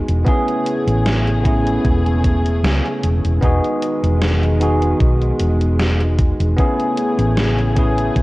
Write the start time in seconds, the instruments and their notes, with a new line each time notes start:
Already playing: string section D#3 G#3, tine electric piano B3 D#4 F#4 G#4
0.09 fingered electric bass E1, closed hi-hat
0.25 string section C#3 A3 G#4, tine electric piano B3 C#4 E4 G#4, kick, closed hi-hat
0.48 closed hi-hat
0.66 closed hi-hat
0.87 fingered electric bass A1, closed hi-hat
1.06 snare, closed hi-hat
1.27 closed hi-hat
1.43 tine electric piano B3 C#4 E4 G#4, kick, closed hi-hat
1.67 closed hi-hat
1.85 fingered electric bass E1, kick, closed hi-hat
2.06 closed hi-hat
2.24 kick, closed hi-hat
2.46 closed hi-hat
2.63 fingered electric bass C#2, snare, closed hi-hat
2.86 closed hi-hat
3.03 fingered electric bass E1, closed hi-hat
3.25 fingered electric bass E1, closed hi-hat
3.41 fingered electric bass E1, string section D#3 G#3, tine electric piano B3 D#4 F#4 G#4, kick, closed hi-hat
3.64 closed hi-hat
3.82 closed hi-hat
4.03 fingered electric bass E1, closed hi-hat
4.22 snare, closed hi-hat
4.43 closed hi-hat
4.60 tine electric piano B3 D#4 F#4 G#4, closed hi-hat
4.82 closed hi-hat
5.00 fingered electric bass B1, kick, closed hi-hat
5.22 closed hi-hat
5.40 fingered electric bass E1, closed hi-hat
5.61 closed hi-hat
5.80 snare, closed hi-hat
6.01 closed hi-hat
6.19 kick, closed hi-hat
6.40 fingered electric bass E1, closed hi-hat
6.57 string section C#3 A3 G#4, tine electric piano B3 C#4 E4 G#4, kick, closed hi-hat
6.80 closed hi-hat
6.98 closed hi-hat
7.19 fingered electric bass A1, closed hi-hat
7.37 snare, closed hi-hat
7.58 closed hi-hat
7.76 tine electric piano B3 C#4 E4 G#4, kick, closed hi-hat
7.98 closed hi-hat
8.16 fingered electric bass E1, kick, closed hi-hat